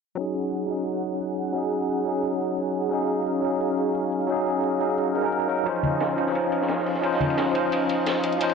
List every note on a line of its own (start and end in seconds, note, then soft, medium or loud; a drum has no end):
0.15 0.65 F#3 medium
0.15 0.67 C#4 medium
0.15 8.54 C#4 medium
0.15 0.68 D#4 medium
0.15 5.63 G#4 medium
0.15 2.89 F#5 medium
0.15 closed hi-hat medium
0.21 0.69 G#4 medium
0.35 closed hi-hat medium
0.52 closed hi-hat medium
0.67 1.51 F#3 medium
0.67 1.53 C#4 medium
0.67 1.54 D#4 medium
0.67 closed hi-hat medium
0.72 1.54 G#4 medium
0.86 closed hi-hat medium
1.04 closed hi-hat medium
1.21 closed hi-hat medium
1.38 closed hi-hat medium
1.47 closed hi-hat soft
1.52 2.03 F#3 medium
1.52 2.04 C#4 medium
1.52 2.05 D#4 medium
1.52 closed hi-hat medium
1.58 2.06 G#4 medium
1.64 closed hi-hat soft
1.72 closed hi-hat medium
1.89 closed hi-hat medium
2.04 2.88 F#3 medium
2.04 2.90 C#4 medium
2.04 2.91 D#4 medium
2.04 closed hi-hat medium
2.09 2.92 G#4 medium
2.24 closed hi-hat medium
2.41 closed hi-hat medium
2.58 closed hi-hat medium
2.75 closed hi-hat medium
2.84 closed hi-hat soft
2.89 3.40 F#3 medium
2.89 3.41 C#4 medium
2.89 3.42 D#4 medium
2.89 8.54 F5 medium
2.89 closed hi-hat medium
2.95 3.43 G#4 medium
3.09 closed hi-hat medium
3.26 closed hi-hat medium
3.41 4.25 F#3 medium
3.41 4.27 C#4 medium
3.41 4.28 D#4 medium
3.41 closed hi-hat medium
3.46 4.29 G#4 medium
3.61 closed hi-hat medium
3.78 closed hi-hat medium
3.95 closed hi-hat medium
4.12 closed hi-hat medium
4.21 closed hi-hat soft
4.27 4.77 F#3 medium
4.27 4.78 C#4 medium
4.27 4.79 D#4 medium
4.27 closed hi-hat medium
4.32 4.80 G#4 medium
4.38 closed hi-hat soft
4.46 closed hi-hat medium
4.64 closed hi-hat medium
4.79 5.13 F#3 medium
4.79 5.13 C#4 medium
4.79 5.14 D#4 medium
4.79 5.14 G#4 medium
4.79 closed hi-hat medium
4.98 closed hi-hat medium
5.14 5.21 F#3 medium
5.14 5.22 C#4 medium
5.14 5.22 D#4 medium
5.14 5.23 A#4 medium
5.14 closed hi-hat medium
5.23 5.47 F#3 medium
5.23 5.47 C#4 medium
5.23 5.48 D#4 medium
5.23 5.48 A#4 medium
5.32 closed hi-hat medium
5.48 5.64 F#3 medium
5.48 5.64 C#4 medium
5.48 5.65 D#4 medium
5.48 5.65 A#4 medium
5.48 closed hi-hat medium
5.58 closed hi-hat soft
5.64 6.14 F3 medium
5.64 6.16 C#4 medium
5.64 6.16 D#4 medium
5.64 8.54 C5 medium
5.64 8.54 D#5 medium
5.64 closed hi-hat medium
5.64 ride medium
5.69 6.17 C5 medium
5.76 ride soft
5.83 closed hi-hat medium
5.83 ride medium
5.83 high conga medium
6.00 snare loud
6.00 closed hi-hat medium
6.00 ride medium
6.15 7.00 F3 medium
6.15 7.01 C#4 medium
6.15 7.02 D#4 medium
6.15 closed hi-hat medium
6.15 ride medium
6.21 7.03 C5 medium
6.27 snare soft
6.35 closed hi-hat medium
6.35 ride medium
6.52 closed hi-hat medium
6.52 ride medium
6.62 snare medium
6.68 snare loud
6.68 closed hi-hat medium
6.68 ride medium
6.78 snare soft
6.86 closed hi-hat medium
6.86 open hi-hat medium
6.95 snare soft
6.95 closed hi-hat soft
7.01 7.51 F3 medium
7.01 7.53 C#4 medium
7.01 7.54 D#4 medium
7.01 closed hi-hat medium
7.01 ride medium
7.06 7.54 C5 loud
7.13 snare soft
7.13 closed hi-hat soft
7.20 closed hi-hat medium
7.20 ride medium
7.20 high conga medium
7.30 ride soft
7.38 snare loud
7.38 closed hi-hat medium
7.38 ride medium
7.52 8.37 F3 medium
7.52 8.38 C#4 medium
7.52 8.39 D#4 medium
7.52 closed hi-hat medium
7.52 ride medium
7.58 8.40 C5 medium
7.72 closed hi-hat medium
7.72 ride medium
7.89 closed hi-hat medium
7.89 ride medium
8.06 snare loud
8.06 closed hi-hat medium
8.06 ride medium
8.23 closed hi-hat medium
8.23 ride medium
8.32 closed hi-hat soft
8.38 8.54 F3 medium
8.38 8.54 C#4 medium
8.38 8.54 D#4 medium
8.38 closed hi-hat medium
8.38 ride medium
8.43 8.54 C5 loud
8.49 ride soft